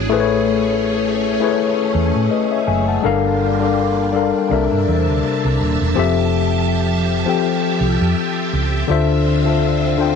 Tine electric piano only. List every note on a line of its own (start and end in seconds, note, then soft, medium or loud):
0.00 0.13 E3 medium
0.00 0.13 B3 medium
0.00 0.13 D4 medium
0.00 0.13 F#4 medium
0.00 0.12 G#4 medium
0.00 0.13 C#5 medium
0.10 1.21 A3 loud
0.10 1.22 E4 medium
0.10 1.23 G#4 medium
0.10 1.23 B4 medium
0.14 0.20 C5 medium
0.20 1.27 C#5 loud
1.40 2.65 A3 medium
1.40 2.66 E4 medium
1.40 2.66 G#4 medium
1.40 2.30 B4 medium
1.40 2.32 C#5 medium
2.31 2.51 B4 soft
2.31 2.50 D#5 medium
2.51 2.67 C#5 medium
2.51 2.67 E5 medium
2.68 2.87 E5 medium
2.68 2.87 G#5 medium
2.88 3.23 F#5 soft
2.88 3.23 A5 medium
3.02 3.52 G3 loud
3.02 3.53 D4 medium
3.02 3.53 A4 medium
3.02 3.53 A#4 loud
3.06 3.54 F5 loud
3.60 4.07 G3 medium
3.60 4.07 D4 medium
3.60 4.08 A4 medium
3.60 4.08 A#4 medium
3.60 4.09 F5 medium
4.12 4.49 G3 medium
4.12 4.49 D4 medium
4.12 4.50 A4 medium
4.12 4.51 A#4 medium
4.17 4.52 F5 medium
4.49 5.79 C3 medium
4.49 5.79 G3 medium
4.49 5.79 D4 medium
4.49 5.80 A4 medium
4.49 5.80 A#4 medium
4.49 5.81 E5 medium
5.95 7.07 F3 loud
5.95 7.07 C4 medium
5.95 7.08 G4 medium
5.95 7.08 A4 medium
5.99 7.09 E5 loud
7.26 8.51 F3 medium
7.26 8.52 C4 medium
7.26 8.52 G4 medium
7.26 8.52 A4 medium
7.26 8.53 G5 medium
8.88 9.37 D3 loud
8.88 9.38 D4 medium
8.88 9.38 F4 medium
8.88 9.39 C5 medium
8.88 9.39 E5 loud
9.45 9.92 D3 medium
9.45 9.92 D4 medium
9.45 9.93 F4 medium
9.45 9.93 C5 medium
9.49 9.94 E5 medium
9.98 10.15 D3 medium
9.98 10.15 D4 medium
9.98 10.15 F4 medium
9.98 10.15 C5 medium
9.98 10.15 G5 medium